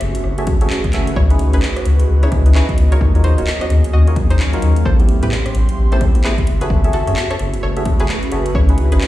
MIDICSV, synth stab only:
0, 0, Header, 1, 2, 480
1, 0, Start_track
1, 0, Tempo, 461538
1, 1211, Time_signature, 4, 2, 24, 8
1, 9437, End_track
2, 0, Start_track
2, 0, Title_t, "Synth stab"
2, 0, Program_c, 0, 62
2, 399, Note_on_c, 0, 66, 85
2, 399, Note_on_c, 0, 69, 82
2, 399, Note_on_c, 0, 73, 79
2, 399, Note_on_c, 0, 76, 96
2, 400, Note_on_c, 0, 68, 82
2, 467, Note_off_c, 0, 66, 0
2, 467, Note_off_c, 0, 68, 0
2, 467, Note_off_c, 0, 69, 0
2, 467, Note_off_c, 0, 73, 0
2, 467, Note_off_c, 0, 76, 0
2, 638, Note_on_c, 0, 76, 109
2, 639, Note_on_c, 0, 66, 100
2, 639, Note_on_c, 0, 68, 92
2, 639, Note_on_c, 0, 69, 90
2, 639, Note_on_c, 0, 73, 91
2, 707, Note_off_c, 0, 66, 0
2, 707, Note_off_c, 0, 68, 0
2, 707, Note_off_c, 0, 69, 0
2, 707, Note_off_c, 0, 73, 0
2, 707, Note_off_c, 0, 76, 0
2, 973, Note_on_c, 0, 66, 88
2, 973, Note_on_c, 0, 68, 80
2, 973, Note_on_c, 0, 69, 79
2, 973, Note_on_c, 0, 73, 80
2, 974, Note_on_c, 0, 76, 96
2, 1135, Note_off_c, 0, 66, 0
2, 1135, Note_off_c, 0, 68, 0
2, 1135, Note_off_c, 0, 73, 0
2, 1136, Note_off_c, 0, 69, 0
2, 1136, Note_off_c, 0, 76, 0
2, 1358, Note_on_c, 0, 61, 97
2, 1358, Note_on_c, 0, 63, 87
2, 1358, Note_on_c, 0, 64, 88
2, 1358, Note_on_c, 0, 68, 88
2, 1358, Note_on_c, 0, 71, 109
2, 1562, Note_off_c, 0, 63, 0
2, 1562, Note_off_c, 0, 71, 0
2, 1563, Note_off_c, 0, 61, 0
2, 1563, Note_off_c, 0, 64, 0
2, 1563, Note_off_c, 0, 68, 0
2, 1598, Note_on_c, 0, 63, 75
2, 1598, Note_on_c, 0, 64, 76
2, 1598, Note_on_c, 0, 68, 79
2, 1598, Note_on_c, 0, 71, 93
2, 1599, Note_on_c, 0, 61, 83
2, 1717, Note_off_c, 0, 64, 0
2, 1717, Note_off_c, 0, 68, 0
2, 1717, Note_off_c, 0, 71, 0
2, 1718, Note_off_c, 0, 61, 0
2, 1718, Note_off_c, 0, 63, 0
2, 2317, Note_on_c, 0, 61, 98
2, 2318, Note_on_c, 0, 63, 89
2, 2318, Note_on_c, 0, 64, 90
2, 2318, Note_on_c, 0, 68, 88
2, 2318, Note_on_c, 0, 71, 107
2, 2522, Note_off_c, 0, 61, 0
2, 2522, Note_off_c, 0, 63, 0
2, 2522, Note_off_c, 0, 64, 0
2, 2523, Note_off_c, 0, 68, 0
2, 2523, Note_off_c, 0, 71, 0
2, 2558, Note_on_c, 0, 61, 82
2, 2558, Note_on_c, 0, 63, 77
2, 2558, Note_on_c, 0, 64, 74
2, 2558, Note_on_c, 0, 68, 75
2, 2558, Note_on_c, 0, 71, 89
2, 2628, Note_off_c, 0, 68, 0
2, 2629, Note_off_c, 0, 61, 0
2, 2629, Note_off_c, 0, 63, 0
2, 2629, Note_off_c, 0, 64, 0
2, 2629, Note_off_c, 0, 71, 0
2, 2650, Note_on_c, 0, 61, 87
2, 2650, Note_on_c, 0, 71, 95
2, 2651, Note_on_c, 0, 63, 81
2, 2651, Note_on_c, 0, 64, 81
2, 2651, Note_on_c, 0, 68, 80
2, 2759, Note_off_c, 0, 61, 0
2, 2759, Note_off_c, 0, 63, 0
2, 2759, Note_off_c, 0, 64, 0
2, 2759, Note_off_c, 0, 68, 0
2, 2759, Note_off_c, 0, 71, 0
2, 3036, Note_on_c, 0, 65, 88
2, 3037, Note_on_c, 0, 63, 93
2, 3037, Note_on_c, 0, 66, 83
2, 3037, Note_on_c, 0, 70, 86
2, 3037, Note_on_c, 0, 73, 103
2, 3242, Note_off_c, 0, 63, 0
2, 3242, Note_off_c, 0, 65, 0
2, 3242, Note_off_c, 0, 66, 0
2, 3242, Note_off_c, 0, 70, 0
2, 3242, Note_off_c, 0, 73, 0
2, 3276, Note_on_c, 0, 73, 109
2, 3277, Note_on_c, 0, 63, 98
2, 3277, Note_on_c, 0, 65, 92
2, 3277, Note_on_c, 0, 66, 91
2, 3277, Note_on_c, 0, 70, 89
2, 3482, Note_off_c, 0, 63, 0
2, 3482, Note_off_c, 0, 65, 0
2, 3482, Note_off_c, 0, 66, 0
2, 3482, Note_off_c, 0, 70, 0
2, 3482, Note_off_c, 0, 73, 0
2, 3516, Note_on_c, 0, 66, 85
2, 3516, Note_on_c, 0, 70, 82
2, 3516, Note_on_c, 0, 73, 99
2, 3517, Note_on_c, 0, 63, 92
2, 3517, Note_on_c, 0, 65, 83
2, 3636, Note_off_c, 0, 70, 0
2, 3637, Note_off_c, 0, 63, 0
2, 3637, Note_off_c, 0, 65, 0
2, 3637, Note_off_c, 0, 66, 0
2, 3637, Note_off_c, 0, 73, 0
2, 4237, Note_on_c, 0, 73, 96
2, 4238, Note_on_c, 0, 63, 86
2, 4238, Note_on_c, 0, 65, 79
2, 4239, Note_on_c, 0, 66, 80
2, 4239, Note_on_c, 0, 70, 80
2, 4306, Note_off_c, 0, 65, 0
2, 4306, Note_off_c, 0, 73, 0
2, 4307, Note_off_c, 0, 63, 0
2, 4307, Note_off_c, 0, 66, 0
2, 4307, Note_off_c, 0, 70, 0
2, 4716, Note_on_c, 0, 66, 88
2, 4717, Note_on_c, 0, 63, 96
2, 4717, Note_on_c, 0, 65, 89
2, 4717, Note_on_c, 0, 70, 91
2, 4717, Note_on_c, 0, 73, 106
2, 5039, Note_off_c, 0, 63, 0
2, 5039, Note_off_c, 0, 65, 0
2, 5039, Note_off_c, 0, 66, 0
2, 5039, Note_off_c, 0, 70, 0
2, 5039, Note_off_c, 0, 73, 0
2, 5197, Note_on_c, 0, 57, 99
2, 5197, Note_on_c, 0, 59, 91
2, 5197, Note_on_c, 0, 60, 90
2, 5197, Note_on_c, 0, 64, 92
2, 5197, Note_on_c, 0, 67, 106
2, 5402, Note_off_c, 0, 57, 0
2, 5402, Note_off_c, 0, 59, 0
2, 5402, Note_off_c, 0, 60, 0
2, 5402, Note_off_c, 0, 64, 0
2, 5402, Note_off_c, 0, 67, 0
2, 5437, Note_on_c, 0, 57, 83
2, 5437, Note_on_c, 0, 59, 78
2, 5437, Note_on_c, 0, 60, 77
2, 5437, Note_on_c, 0, 64, 76
2, 5437, Note_on_c, 0, 67, 91
2, 5557, Note_off_c, 0, 57, 0
2, 5557, Note_off_c, 0, 59, 0
2, 5557, Note_off_c, 0, 60, 0
2, 5557, Note_off_c, 0, 64, 0
2, 5557, Note_off_c, 0, 67, 0
2, 6157, Note_on_c, 0, 59, 89
2, 6158, Note_on_c, 0, 57, 96
2, 6158, Note_on_c, 0, 60, 88
2, 6158, Note_on_c, 0, 64, 90
2, 6158, Note_on_c, 0, 67, 108
2, 6362, Note_off_c, 0, 59, 0
2, 6362, Note_off_c, 0, 60, 0
2, 6363, Note_off_c, 0, 57, 0
2, 6363, Note_off_c, 0, 64, 0
2, 6363, Note_off_c, 0, 67, 0
2, 6397, Note_on_c, 0, 59, 76
2, 6397, Note_on_c, 0, 67, 92
2, 6398, Note_on_c, 0, 57, 84
2, 6398, Note_on_c, 0, 60, 75
2, 6398, Note_on_c, 0, 64, 74
2, 6468, Note_off_c, 0, 57, 0
2, 6468, Note_off_c, 0, 59, 0
2, 6468, Note_off_c, 0, 64, 0
2, 6468, Note_off_c, 0, 67, 0
2, 6469, Note_off_c, 0, 60, 0
2, 6491, Note_on_c, 0, 57, 87
2, 6491, Note_on_c, 0, 59, 79
2, 6491, Note_on_c, 0, 64, 78
2, 6491, Note_on_c, 0, 67, 100
2, 6492, Note_on_c, 0, 60, 78
2, 6599, Note_off_c, 0, 57, 0
2, 6599, Note_off_c, 0, 59, 0
2, 6599, Note_off_c, 0, 60, 0
2, 6599, Note_off_c, 0, 64, 0
2, 6599, Note_off_c, 0, 67, 0
2, 6876, Note_on_c, 0, 69, 88
2, 6877, Note_on_c, 0, 66, 95
2, 6877, Note_on_c, 0, 68, 85
2, 6877, Note_on_c, 0, 73, 86
2, 6877, Note_on_c, 0, 76, 105
2, 7081, Note_off_c, 0, 69, 0
2, 7082, Note_off_c, 0, 66, 0
2, 7082, Note_off_c, 0, 68, 0
2, 7082, Note_off_c, 0, 73, 0
2, 7082, Note_off_c, 0, 76, 0
2, 7117, Note_on_c, 0, 66, 101
2, 7117, Note_on_c, 0, 68, 91
2, 7117, Note_on_c, 0, 69, 91
2, 7117, Note_on_c, 0, 73, 93
2, 7117, Note_on_c, 0, 76, 111
2, 7322, Note_off_c, 0, 66, 0
2, 7322, Note_off_c, 0, 68, 0
2, 7322, Note_off_c, 0, 69, 0
2, 7322, Note_off_c, 0, 73, 0
2, 7322, Note_off_c, 0, 76, 0
2, 7356, Note_on_c, 0, 66, 94
2, 7356, Note_on_c, 0, 69, 82
2, 7356, Note_on_c, 0, 73, 84
2, 7356, Note_on_c, 0, 76, 103
2, 7357, Note_on_c, 0, 68, 84
2, 7476, Note_off_c, 0, 66, 0
2, 7476, Note_off_c, 0, 73, 0
2, 7476, Note_off_c, 0, 76, 0
2, 7477, Note_off_c, 0, 68, 0
2, 7477, Note_off_c, 0, 69, 0
2, 8078, Note_on_c, 0, 66, 86
2, 8078, Note_on_c, 0, 68, 79
2, 8078, Note_on_c, 0, 69, 80
2, 8078, Note_on_c, 0, 73, 82
2, 8078, Note_on_c, 0, 76, 96
2, 8146, Note_off_c, 0, 66, 0
2, 8146, Note_off_c, 0, 69, 0
2, 8146, Note_off_c, 0, 73, 0
2, 8146, Note_off_c, 0, 76, 0
2, 8147, Note_off_c, 0, 68, 0
2, 8319, Note_on_c, 0, 76, 107
2, 8320, Note_on_c, 0, 66, 100
2, 8320, Note_on_c, 0, 68, 91
2, 8320, Note_on_c, 0, 69, 91
2, 8320, Note_on_c, 0, 73, 90
2, 8387, Note_off_c, 0, 66, 0
2, 8387, Note_off_c, 0, 68, 0
2, 8387, Note_off_c, 0, 73, 0
2, 8387, Note_off_c, 0, 76, 0
2, 8388, Note_off_c, 0, 69, 0
2, 8653, Note_on_c, 0, 66, 86
2, 8653, Note_on_c, 0, 69, 81
2, 8653, Note_on_c, 0, 73, 78
2, 8653, Note_on_c, 0, 76, 94
2, 8654, Note_on_c, 0, 68, 79
2, 8815, Note_off_c, 0, 69, 0
2, 8815, Note_off_c, 0, 76, 0
2, 8816, Note_off_c, 0, 66, 0
2, 8816, Note_off_c, 0, 68, 0
2, 8816, Note_off_c, 0, 73, 0
2, 9040, Note_on_c, 0, 61, 97
2, 9040, Note_on_c, 0, 63, 87
2, 9040, Note_on_c, 0, 68, 91
2, 9040, Note_on_c, 0, 71, 108
2, 9041, Note_on_c, 0, 64, 88
2, 9243, Note_off_c, 0, 61, 0
2, 9243, Note_off_c, 0, 68, 0
2, 9243, Note_off_c, 0, 71, 0
2, 9244, Note_off_c, 0, 63, 0
2, 9244, Note_off_c, 0, 64, 0
2, 9279, Note_on_c, 0, 61, 85
2, 9279, Note_on_c, 0, 63, 76
2, 9280, Note_on_c, 0, 64, 75
2, 9280, Note_on_c, 0, 68, 75
2, 9280, Note_on_c, 0, 71, 93
2, 9398, Note_off_c, 0, 61, 0
2, 9398, Note_off_c, 0, 63, 0
2, 9398, Note_off_c, 0, 64, 0
2, 9398, Note_off_c, 0, 68, 0
2, 9398, Note_off_c, 0, 71, 0
2, 9437, End_track
0, 0, End_of_file